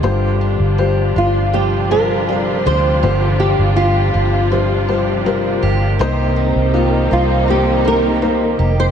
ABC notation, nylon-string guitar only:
X:1
M:4/4
L:1/16
Q:1/4=81
K:Gphr
V:1 name="Nylon-string guitar"
z6 F2 G2 B4 c2- | c2 G2 F6 z6 | z6 F2 G2 B4- B c |]